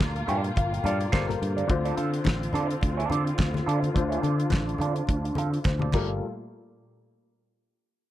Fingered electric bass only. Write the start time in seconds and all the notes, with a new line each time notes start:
0.00 D2
0.28 G2
0.57 G1
0.85 G2
1.13 G1
1.42 G2
1.70 D2
1.98 D3
2.27 A1
2.54 D3
2.83 D2
3.11 D3
3.39 D2
3.67 D3
3.96 D2
4.23 D3
4.53 A1
4.80 D3
5.09 D2
5.36 D3
5.66 D2
5.94 G1